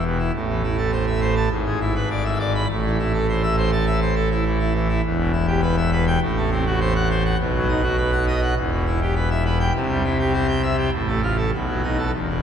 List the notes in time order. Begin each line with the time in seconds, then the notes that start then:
Already playing: E1 E2
0.05 B2
0.19 E4
0.34 A1 A2
0.49 E3
0.63 E4
0.78 A4
0.92 C5
1.07 E5
1.21 C5
1.36 A5
1.51 G#1 G#2
1.66 G#3
1.81 E4
1.95 B4
2.10 D5
2.25 E5
2.39 D5
2.55 B5
2.70 A1 A2
2.84 E3
2.99 E4
3.14 A4
3.29 C5
3.43 E5
3.57 C5
3.72 A5
3.86 E5
4.01 C5
4.16 A4
4.31 E4
4.45 E3
4.60 E4
4.75 E3
4.89 E4
5.04 E1 E2
5.18 B2
5.33 E4
5.47 G4
5.62 B4
5.77 E5
5.92 B4
6.07 G5
6.21 A1 A2
6.37 A3
6.51 C4
6.67 F#4
6.81 C5
6.96 F#5
7.11 C5
7.25 F#5
7.40 B1 B2
7.55 F#3
7.69 D#4
7.83 F#4
7.97 B4
8.12 F#5
8.27 D#5
8.42 F#5
8.56 E1 E2
8.71 B2
8.87 E4
9.01 G4
9.16 B4
9.31 E5
9.45 B4
9.60 G5
9.74 C2 C3
9.89 G3
10.05 E4
10.20 G4
10.33 C5
10.48 G5
10.63 E5
10.78 G5
10.93 A1 A2
11.08 A3
11.23 F4
11.38 A4
11.52 B1 B2
11.68 F#3
11.84 D#4
11.98 A4
12.13 E1 E2
12.29 B2